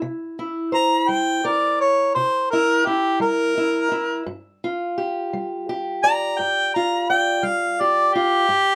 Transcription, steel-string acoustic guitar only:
0, 0, Header, 1, 2, 480
1, 0, Start_track
1, 0, Tempo, 704060
1, 27, Time_signature, 12, 3, 24, 8
1, 5965, End_track
2, 0, Start_track
2, 0, Title_t, "Steel-string acoustic guitar"
2, 0, Program_c, 0, 25
2, 12, Note_on_c, 0, 48, 76
2, 265, Note_on_c, 0, 64, 56
2, 452, Note_off_c, 0, 48, 0
2, 492, Note_on_c, 0, 72, 59
2, 739, Note_on_c, 0, 55, 55
2, 986, Note_on_c, 0, 70, 59
2, 1175, Note_off_c, 0, 55, 0
2, 1219, Note_off_c, 0, 72, 0
2, 1471, Note_on_c, 0, 48, 72
2, 1706, Note_off_c, 0, 64, 0
2, 1725, Note_on_c, 0, 64, 64
2, 1901, Note_off_c, 0, 48, 0
2, 1948, Note_off_c, 0, 64, 0
2, 1956, Note_on_c, 0, 64, 59
2, 2180, Note_on_c, 0, 55, 59
2, 2429, Note_off_c, 0, 64, 0
2, 2437, Note_on_c, 0, 64, 60
2, 2616, Note_off_c, 0, 55, 0
2, 2662, Note_off_c, 0, 64, 0
2, 2670, Note_on_c, 0, 64, 67
2, 2878, Note_off_c, 0, 70, 0
2, 2880, Note_off_c, 0, 64, 0
2, 2907, Note_on_c, 0, 43, 81
2, 3163, Note_on_c, 0, 65, 61
2, 3339, Note_off_c, 0, 43, 0
2, 3393, Note_on_c, 0, 67, 60
2, 3636, Note_on_c, 0, 55, 59
2, 3878, Note_off_c, 0, 67, 0
2, 3880, Note_on_c, 0, 67, 66
2, 4064, Note_off_c, 0, 55, 0
2, 4116, Note_on_c, 0, 74, 60
2, 4356, Note_on_c, 0, 43, 67
2, 4596, Note_off_c, 0, 65, 0
2, 4609, Note_on_c, 0, 65, 59
2, 4784, Note_off_c, 0, 43, 0
2, 4836, Note_off_c, 0, 74, 0
2, 4839, Note_on_c, 0, 74, 65
2, 5065, Note_on_c, 0, 55, 66
2, 5314, Note_off_c, 0, 67, 0
2, 5322, Note_on_c, 0, 67, 62
2, 5499, Note_off_c, 0, 55, 0
2, 5551, Note_off_c, 0, 65, 0
2, 5559, Note_on_c, 0, 65, 64
2, 5764, Note_off_c, 0, 65, 0
2, 5766, Note_off_c, 0, 67, 0
2, 5785, Note_on_c, 0, 43, 78
2, 5965, Note_off_c, 0, 43, 0
2, 5965, Note_off_c, 0, 74, 0
2, 5965, End_track
0, 0, End_of_file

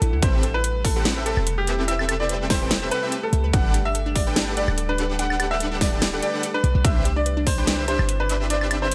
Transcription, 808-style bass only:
0, 0, Header, 1, 2, 480
1, 0, Start_track
1, 0, Tempo, 413793
1, 261, Time_signature, 4, 2, 24, 8
1, 10379, End_track
2, 0, Start_track
2, 0, Title_t, "808-style bass"
2, 0, Program_c, 0, 38
2, 21, Note_on_c, 0, 33, 93
2, 151, Note_on_c, 0, 38, 96
2, 168, Note_off_c, 0, 33, 0
2, 252, Note_off_c, 0, 38, 0
2, 261, Note_on_c, 0, 33, 101
2, 1575, Note_off_c, 0, 33, 0
2, 1591, Note_on_c, 0, 28, 106
2, 3367, Note_off_c, 0, 28, 0
2, 3861, Note_on_c, 0, 36, 94
2, 3991, Note_on_c, 0, 38, 94
2, 4009, Note_off_c, 0, 36, 0
2, 4092, Note_off_c, 0, 38, 0
2, 4101, Note_on_c, 0, 31, 101
2, 5415, Note_off_c, 0, 31, 0
2, 5431, Note_on_c, 0, 26, 108
2, 7207, Note_off_c, 0, 26, 0
2, 7700, Note_on_c, 0, 35, 96
2, 7820, Note_off_c, 0, 35, 0
2, 7831, Note_on_c, 0, 35, 103
2, 7932, Note_off_c, 0, 35, 0
2, 7941, Note_on_c, 0, 36, 100
2, 9255, Note_off_c, 0, 36, 0
2, 9272, Note_on_c, 0, 31, 106
2, 10379, Note_off_c, 0, 31, 0
2, 10379, End_track
0, 0, End_of_file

